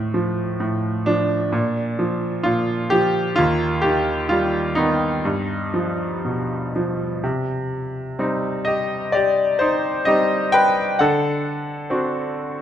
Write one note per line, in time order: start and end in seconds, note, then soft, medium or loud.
0.00 0.59 A2 medium
0.14 1.05 F3 soft
0.60 1.49 A2 soft
1.06 1.51 F3 soft
1.06 2.40 D4 medium
1.52 2.44 A#2 medium
1.99 2.91 F3 soft
2.43 3.35 A#2 soft
2.43 2.92 F4 medium
2.90 3.36 F3 soft
2.90 3.38 G4 medium
3.36 5.21 D#2 medium
3.36 5.21 A#3 soft
3.36 3.79 F4 medium
3.82 4.77 D#3 soft
3.82 4.31 G4 medium
4.29 5.23 G3 soft
4.29 4.78 F4 medium
4.75 5.24 D#3 soft
4.75 6.71 B3 soft
4.75 6.70 D#4 medium
5.25 7.20 G2 soft
5.74 6.74 F3 soft
6.25 7.21 B2 soft
6.76 7.23 F3 soft
7.24 10.95 C3 soft
8.19 9.10 G3 soft
8.19 9.10 C4 soft
8.19 9.11 D#4 soft
8.65 9.10 G4 soft
8.65 9.14 D#5 medium
9.12 9.57 G4 medium
9.12 9.61 D5 medium
9.59 10.04 D#4 medium
9.59 10.08 C5 medium
10.05 10.96 G3 soft
10.05 10.97 C4 soft
10.05 10.97 D#4 soft
10.05 10.50 G4 soft
10.05 10.54 D#5 medium
10.52 10.96 B4 medium
10.52 10.96 G5 medium
10.99 12.62 D3 medium
10.99 11.86 A4 medium
10.99 11.85 F#5 medium
11.90 12.62 C4 soft
11.90 12.62 D4 soft
11.90 12.62 F#4 soft